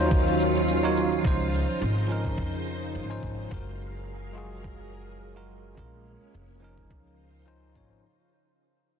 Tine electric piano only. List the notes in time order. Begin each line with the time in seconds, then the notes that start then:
Already playing: F#3 D#4 F4 C5 C#5
0.83 F#3 D#4 F4 C#5
1.23 F3 C#4 D#4
1.27 C5
2.08 F3 C#4 D#4
2.12 A#4
3.09 F3 C#4 D#4 C5
3.49 G#3 F4 F#4
3.53 A#4
4.33 G#3 F4 F#4
4.38 G#4
5.35 G#3 F4 F#4 A#4
5.75 G#3 C#4 F4
5.79 A#4
6.60 F3 C#4 D#4
6.64 A#4
7.46 F3 C#4 D#4 C5
7.75 F3 C#4 D#4 C#5